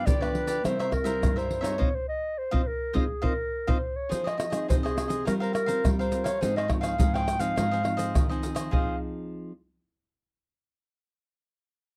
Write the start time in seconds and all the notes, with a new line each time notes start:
Already playing: F3 B3 D4
0.06 D3 F4 G4 B4 D5, pandeiro, shaker, surdo
0.21 F3 B3 D4 G4 B4 D5, pandeiro, tamborim, shaker
0.35 pandeiro
0.47 G4 B4 D5, pandeiro, shaker
0.63 C3 G3 A#3 E4 A#4 C5 E5, pandeiro, tamborim, shaker, surdo
0.79 A#4 C5 E5, pandeiro, tamborim, shaker
0.91 A#4, muted cavaquinho stroke, pandeiro, tamborim, surdo
1.04 G3 A#3 E4 A#4 C5 E5, pandeiro, shaker
1.21 G2, pandeiro, tamborim, shaker, surdo
1.36 G3 A#3 E4 A#4 C5 E5, pandeiro, shaker
1.51 pandeiro
1.61 C4 D#4 G#4 A#4 C5 C#5 E5, pandeiro, tamborim, shaker
1.78 C4 D#4 F4 C5 D#5 F5, surdo
1.95 C5
2.09 D#5
2.38 C5
2.51 C4 D#4 F4 C5 D#5 F5, surdo
2.68 A#4
2.93 C4 D#4 F4 G#4 C5 D#5 F5, surdo
3.22 C4 D#4 F4 A#4 C5 D#5 F5, surdo
3.67 C4 D#4 F4 C5 D#5 F5, surdo
3.96 C#5
4.09 F3 F4 G#4 C5 D#5, pandeiro, shaker, surdo
4.24 G#4 C5 D#5, pandeiro, tamborim, shaker
4.37 muted cavaquinho stroke, pandeiro, tamborim, shaker
4.50 C4 D#4 G#4 C5 D#5, pandeiro, tamborim, shaker
4.68 C3 F4 G#4 C5 D#5, pandeiro, shaker, surdo
4.83 G#4 C5 D#5, pandeiro, tamborim, shaker
4.97 C4 D#4 G#4, pandeiro, tamborim, shaker
5.08 G#4 C5 D#5, pandeiro, shaker
5.25 G3 C4 F4 A#4 C5 F5, pandeiro, tamborim, shaker, surdo
5.40 A#4 C5 F5, pandeiro, shaker
5.53 A#4, muted cavaquinho stroke, pandeiro, tamborim, shaker
5.66 C4 F4 A#4 C5 F5, pandeiro, shaker
5.84 G3, pandeiro, tamborim, shaker, surdo
5.99 A#4 C5 F5, pandeiro, shaker
6.12 C4 F4 A#4, pandeiro, shaker
6.24 A#4 C5 C#5 F5, pandeiro, tamborim, shaker
6.41 G#2 F3 C4 D#4 G#4 C5 F5, pandeiro, shaker, surdo
6.56 G#4 C5 D#5 F5, pandeiro, tamborim, shaker
6.68 F3 C4 D#4, muted cavaquinho stroke, pandeiro, tamborim, surdo
6.81 G#4 C5 F5, pandeiro, tamborim, shaker
6.98 G#2 F3 C4 D#4 G#4 C5 F5, pandeiro, shaker, surdo
7.14 G#4 C5 F5 G5, pandeiro, tamborim, shaker
7.28 pandeiro, tamborim, shaker
7.39 F3 C4 D#4 G#4 C5 F5, pandeiro, shaker
7.56 G#2 F4 G#4 C5 D#5, pandeiro, tamborim, shaker, surdo
7.71 G#4 C5 D#5, pandeiro, shaker
7.83 F3 C4 D#4, muted cavaquinho stroke, pandeiro, tamborim
7.97 G#4 C5 D#5, pandeiro, shaker
8.14 D#3, pandeiro, tamborim, shaker, surdo
8.29 F3 C4 D#4 G#4 C5 D#5, pandeiro, shaker
8.43 pandeiro, shaker
8.55 G#4 C5 D#5, pandeiro, tamborim, shaker
8.71 F3 C4 D#4 F4 G#4 C5 D#5 F5, surdo